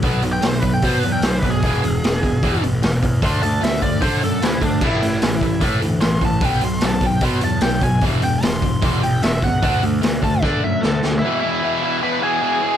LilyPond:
<<
  \new Staff \with { instrumentName = "Lead electric guitar" } { \time 4/4 \key e \mixolydian \tempo 4 = 150 \tuplet 3/2 { r4 g''8 c''8 b'8 g''8 c''8 b'8 g''8 c''8 b'8 gis'8~ } | gis'2~ gis'8 r4. | c'''8 a''8 e''8 d''8 c''8 a'8 e'8 d'8 | e'2 r4 c'''8 a''8 |
g''8 c'''8 a''8 g''8 c'''8 a''8 g''8 gis''8 | r8 g''8 c'''4. g''8 e''8 fis''8~ | fis''8 r4 a''8 d''8 e''8 a'8 r8 | <e' e''>8 <e' e''>4. <b' b''>8 <gis' gis''>4. | }
  \new Staff \with { instrumentName = "Distorted electric guitar" } { \clef bass \time 4/4 \key e \mixolydian <b, fis b>8 <b, fis>8 <b, fis>8 <b, fis>8 <b, fis b>8 <b, fis>8 <b, fis>8 <b, fis>8 | <e, b, e>8 <e, b,>8 <e, b,>8 <e, b,>8 <e, b, e>8 <e, b,>8 <e, b,>8 <e, b,>8 | <d a d'>8 <d a>8 <d a>8 <d a>8 <d a d'>8 <d a>8 <d a>8 <d a>8 | <a, e a>8 <a, e>8 <a, e>8 <a, e>8 <a, e a>8 <a, e>8 <a, e>8 <a, e>8 |
<b, fis b>8 <b, fis>8 <b, fis>8 <b, fis>8 <b, fis b>8 <b, fis>8 <b, fis>8 <b, fis>8 | <e, b, e>8 <e, b,>8 <e, b,>8 <e, b,>8 <e, b, e>8 <e, b,>8 <e, b,>8 <e, b,>8 | <d a d'>8 <d a>8 <d a>8 <d a>8 <d a d'>8 <d a>8 <d a>8 <d a>8 | <e, b, e>8 <e, b, e>8 <e, b, e>8 <e, b, e>8 <e, b, e>8 <e, b, e>8 <e, b, e>8 <e, b, e>8 | }
  \new Staff \with { instrumentName = "Picked electric bass" } { \clef bass \time 4/4 \key e \mixolydian b,,8 b,,8 b,,4 b,8 e,8 b,,8 b,,8 | e,,8 e,,8 e,,4 e,8 a,,8 e,,8 e,8 | d,8 d,8 d,4 d8 fis,8 d,8 d,8 | a,,8 a,,8 a,,4 a,8 d,8 a,,8 a,,8 |
b,,8 b,,8 b,,4 b,8 e,8 b,,8 b,,8 | e,,8 e,,8 e,,4 e,8 a,,8 e,,8 cis,8 | d,8 d,8 d,4 d8 fis,8 d,8 d,8 | r1 | }
  \new DrumStaff \with { instrumentName = "Drums" } \drummode { \time 4/4 <hho bd>8 hho8 <hho sn>8 <hho bd>8 <hho bd>8 hho8 <hho sn>8 <hho bd>8 | <hho bd>8 hho8 <hho sn>8 <hho bd>8 <hho bd>8 hho8 <hho sn>8 <hho bd>8 | <hho bd>8 hho8 <hho sn>8 <hho bd>8 <hho bd>8 hho8 <hho sn>8 <hho bd>8 | <cymc bd>8 hho8 <hho sn>8 <hho bd>8 <hho bd>8 hho8 <hho sn>8 <hho bd>8 |
<hho bd>8 hho8 <hho sn>8 <hho bd>8 <hho bd>8 hho8 <hho sn>8 <hho bd>8 | <hho bd>8 hho8 <hho sn>8 <hho bd>8 <hho bd>8 hho8 <hho sn>8 <hho bd>8 | <hho bd>8 hho8 <hho sn>8 <hho bd>8 <bd sn>4 sn8 sn8 | r4 r4 r4 r4 | }
>>